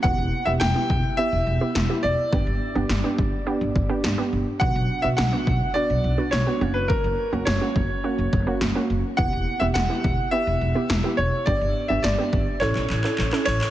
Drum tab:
CP |----------------|----------------|----------------|----------------|
SD |----o-------o---|----o-------o---|----o-------o---|----o-------o---|
BD |o-----o---------|o-----o---o-----|o-----o---------|o-----o---o-----|

CP |----------------|--------xxxxxxxx|
SD |----o-------o---|----o-----------|
BD |o-----o---------|o-----o---------|